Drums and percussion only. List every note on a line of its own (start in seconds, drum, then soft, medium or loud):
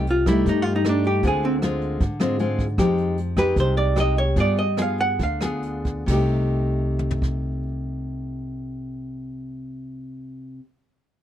0.07 closed hi-hat soft
0.26 kick soft
0.26 cross-stick medium
0.26 closed hi-hat soft
0.46 kick medium
0.46 closed hi-hat soft
0.65 closed hi-hat soft
0.85 cross-stick medium
0.85 closed hi-hat soft
1.04 closed hi-hat soft
1.23 kick medium
1.23 closed hi-hat soft
1.43 closed hi-hat soft
1.62 cross-stick medium
1.62 closed hi-hat soft
1.81 closed hi-hat soft
2.00 kick medium
2.00 closed hi-hat soft
2.20 cross-stick medium
2.20 closed hi-hat soft
2.39 closed hi-hat soft
2.59 kick soft
2.59 closed hi-hat soft
2.78 kick medium
2.78 cross-stick medium
2.78 closed hi-hat soft
2.98 closed hi-hat soft
3.18 closed hi-hat soft
3.37 kick soft
3.37 cross-stick soft
3.37 closed hi-hat soft
3.56 kick medium
3.56 closed hi-hat soft
3.76 closed hi-hat soft
3.96 cross-stick medium
3.96 closed hi-hat soft
4.17 closed hi-hat soft
4.36 kick medium
4.36 closed hi-hat soft
4.57 closed hi-hat soft
4.77 cross-stick medium
4.77 closed hi-hat soft
4.98 closed hi-hat soft
5.19 kick soft
5.19 closed hi-hat soft
5.41 cross-stick medium
5.41 closed hi-hat soft
5.63 closed hi-hat soft
5.85 kick soft
5.85 closed hi-hat soft
6.08 kick medium
6.08 crash medium
6.99 mid tom soft
7.11 floor tom soft
7.22 kick medium